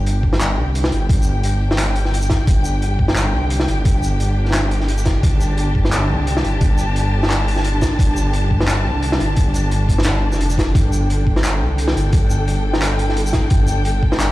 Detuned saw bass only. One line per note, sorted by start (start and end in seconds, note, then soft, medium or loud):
0.00 0.59 G1 medium
0.58 0.91 C2 medium
0.92 1.43 G1 medium
1.44 2.38 G1 loud
2.47 3.35 G1 medium
3.34 3.67 C2 medium
3.68 4.19 G1 medium
4.20 5.14 G1 loud
5.23 6.11 G1 medium
6.10 6.43 C2 loud
6.44 6.95 G1 medium
6.96 7.90 G1 loud
7.99 8.87 G1 loud
8.85 9.19 C2 medium
9.20 9.71 G1 medium
9.72 10.34 G1 loud
10.33 10.74 F1 medium
10.75 11.63 G1 loud
11.61 11.95 C2 medium
11.96 12.46 G1 medium
12.47 13.42 G1 medium
13.51 14.32 G1 loud